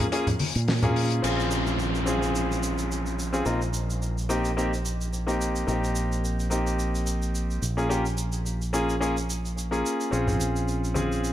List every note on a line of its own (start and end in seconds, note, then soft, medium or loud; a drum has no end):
0.12 0.25 A#3 medium
0.12 0.25 C#4 medium
0.12 0.25 F4 medium
0.12 0.25 G#4 loud
0.12 closed hi-hat medium
0.27 closed hi-hat medium
0.27 low conga medium
0.39 open hi-hat loud
0.39 high conga medium
0.55 1.20 A#2 medium
0.55 closed hi-hat medium
0.68 snare loud
0.68 open hi-hat medium
0.82 1.20 A#3 medium
0.82 1.20 C#4 medium
0.82 1.20 F4 medium
0.82 1.21 G#4 medium
0.82 closed hi-hat medium
0.82 low conga medium
0.96 open hi-hat medium
1.10 closed hi-hat medium
1.22 3.43 A#1 medium
1.22 2.03 C4 medium
1.22 2.03 C#4 medium
1.22 2.04 F4 medium
1.22 2.04 G#4 medium
1.22 crash medium
1.22 downlifter medium
1.22 shaker medium
1.40 shaker soft
1.51 shaker medium
1.67 shaker soft
1.79 shaker soft
1.95 shaker soft
2.06 3.29 C4 medium
2.06 3.29 C#4 medium
2.06 3.30 F4 medium
2.06 3.30 G#4 medium
2.06 shaker medium
2.23 shaker soft
2.35 shaker medium
2.52 shaker soft
2.63 shaker medium
2.78 shaker soft
2.92 shaker soft
3.06 shaker soft
3.19 shaker medium
3.33 3.42 C4 medium
3.33 3.43 C#4 medium
3.33 3.43 F4 medium
3.33 3.43 G#4 medium
3.33 shaker soft
3.45 5.65 A#1 medium
3.45 3.58 A#3 medium
3.45 3.58 C4 medium
3.45 3.59 D#4 medium
3.45 3.59 F4 medium
3.45 shaker medium
3.62 shaker soft
3.74 shaker medium
3.90 shaker soft
4.02 shaker soft
4.18 shaker soft
4.29 4.49 A#3 medium
4.29 4.49 C4 medium
4.29 4.49 D#4 medium
4.29 4.49 G4 medium
4.29 shaker medium
4.45 shaker soft
4.57 4.70 A#3 medium
4.57 4.70 C4 medium
4.57 4.70 D#4 medium
4.57 4.70 G4 medium
4.57 shaker medium
4.73 shaker soft
4.85 shaker medium
5.01 shaker soft
5.13 shaker soft
5.27 5.64 A#3 medium
5.27 5.65 C4 medium
5.27 5.65 D#4 medium
5.27 5.65 G4 medium
5.27 shaker soft
5.41 shaker medium
5.56 shaker soft
5.67 7.60 A#1 medium
5.67 6.48 A#3 medium
5.67 6.48 C4 medium
5.67 6.48 D#4 medium
5.67 6.49 G4 medium
5.67 shaker soft
5.84 shaker soft
5.95 shaker medium
6.12 shaker soft
6.25 shaker medium
6.39 shaker soft
6.50 7.60 A#3 medium
6.50 7.61 C4 medium
6.50 7.61 D#4 medium
6.50 7.61 G4 medium
6.50 shaker medium
6.67 shaker soft
6.79 shaker medium
6.95 shaker soft
7.07 shaker medium
7.22 shaker soft
7.35 shaker medium
7.51 shaker soft
7.62 9.82 A#1 medium
7.62 shaker medium
7.77 7.87 A#3 medium
7.77 7.87 C#4 medium
7.77 7.87 F4 medium
7.77 7.87 G#4 medium
7.77 shaker soft
7.89 8.02 A#3 medium
7.89 8.03 C#4 medium
7.89 8.03 F4 medium
7.89 8.03 G4 medium
7.89 shaker medium
8.06 shaker soft
8.17 shaker medium
8.32 shaker soft
8.46 shaker medium
8.62 shaker soft
8.73 8.93 A#3 medium
8.73 8.93 C#4 medium
8.73 8.93 F4 medium
8.73 8.93 G#4 medium
8.73 shaker medium
8.89 shaker soft
9.00 9.14 A#3 medium
9.00 9.14 C#4 medium
9.00 9.14 F4 medium
9.00 9.14 G#4 medium
9.00 shaker medium
9.17 shaker soft
9.30 shaker medium
9.45 shaker soft
9.58 shaker soft
9.71 10.09 A#3 medium
9.71 10.09 C#4 medium
9.71 10.09 F4 medium
9.71 10.09 G#4 medium
9.71 shaker soft
9.86 shaker medium
10.00 shaker soft
10.11 11.33 A#1 medium
10.11 10.92 C4 medium
10.11 10.92 C#4 medium
10.11 10.93 F4 medium
10.11 10.93 G#4 medium
10.11 shaker medium
10.27 low conga medium
10.27 shaker soft
10.39 high bongo soft
10.39 shaker medium
10.56 shaker soft
10.68 shaker medium
10.84 shaker soft
10.94 11.33 C4 medium
10.94 11.33 C#4 medium
10.94 11.33 F4 medium
10.94 11.33 G#4 medium
10.94 high bongo medium
10.94 high conga medium
10.94 shaker medium
11.12 shaker soft
11.24 shaker medium